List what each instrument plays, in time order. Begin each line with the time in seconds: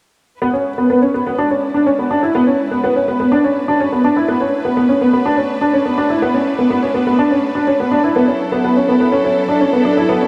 0.41 string section G#3 E4 B4, upright piano B3
0.53 upright piano C#4
0.78 upright piano B3
0.90 upright piano B3
1.02 upright piano C#4
1.14 upright piano B3
1.26 upright piano B3
1.38 upright piano D4
1.50 upright piano C#4
1.74 upright piano D4
1.86 upright piano C#4
1.99 upright piano B3
2.11 upright piano D4
2.23 upright piano E4
2.35 upright piano B3
2.47 upright piano C#4
2.71 upright piano B3
2.83 upright piano B3
2.96 upright piano C#4
3.08 upright piano B3
3.20 upright piano B3
3.32 upright piano D4
3.44 upright piano C#4
3.68 upright piano D4
3.80 upright piano C#4
3.92 upright piano B3
4.04 upright piano D4
4.16 upright piano E4
4.28 string section A3 D4, upright piano B3
4.41 upright piano C#4
4.65 upright piano B3
4.77 upright piano B3
4.89 upright piano C#4
5.01 upright piano B3
5.13 upright piano B3
5.26 upright piano D4
5.37 upright piano C#4
5.61 upright piano D4
5.73 upright piano C#4
5.85 upright piano B3
5.98 upright piano D4
6.10 upright piano E4
6.22 upright piano B3
6.34 upright piano C#4
6.58 upright piano B3
6.70 upright piano B3
6.83 upright piano C#4
6.94 upright piano B3
7.07 upright piano B3
7.19 upright piano D4
7.31 upright piano C#4
7.55 upright piano D4
7.67 upright piano C#4
7.80 upright piano B3
7.91 upright piano D4
8.04 upright piano E4
8.16 string section F#3 E4 A4, upright piano B3
8.28 upright piano C#4
8.52 upright piano B3
8.64 upright piano B3
8.76 upright piano C#4
8.88 upright piano B3
9.00 upright piano B3
9.12 upright piano C#4
9.24 upright piano C#4
9.49 upright piano D4
9.61 upright piano C#4
9.73 upright piano B3
9.85 upright piano D4
9.97 upright piano E4
10.09 upright piano B3
10.21 upright piano C#4